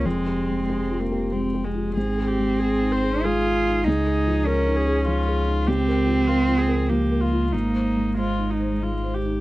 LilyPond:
<<
  \new Staff \with { instrumentName = "Viola" } { \time 3/4 \key aes \major \tempo 4 = 95 aes4 aes8 bes8 c'8 aes8 | aes'8 g'8 aes'8 c''8 aes'4 | aes'4 bes'8 aes'8 f'4 | g'4 f'8 aes'8 g'8 f'8 |
ees'4 f'8 ees'8 f'8 g'8 | }
  \new Staff \with { instrumentName = "Felt piano" } { \time 3/4 \key aes \major \tuplet 3/2 { f,8 g'8 aes8 g'8 f'8 g'8 aes8 g'8 f'8 } | \tuplet 3/2 { aes,8 aes'8 aes8 aes'8 ees'8 aes'8 aes8 aes'8 ees'8 } | \tuplet 3/2 { des,8 aes'8 f8 aes'8 ees'8 aes'8 f8 aes'8 ees'8 } | \tuplet 3/2 { des,8 bes'8 f8 bes'8 f'8 bes'8 f8 bes'8 f'8 } |
\tuplet 3/2 { aes,8 c''8 aes8 c''8 ees'8 c''8 aes8 c''8 ees'8 } | }
  \new Staff \with { instrumentName = "Cello" } { \time 3/4 \key aes \major c'2 r4 | c'2 f'4 | ees'4 des'4. r8 | c'2 bes4 |
bes4 aes4. r8 | }
  \new Staff \with { instrumentName = "Sub bass" } { \clef bass \time 3/4 \key aes \major f,,2. | aes,,2. | des,2.~ | des,2. |
aes,,2. | }
>>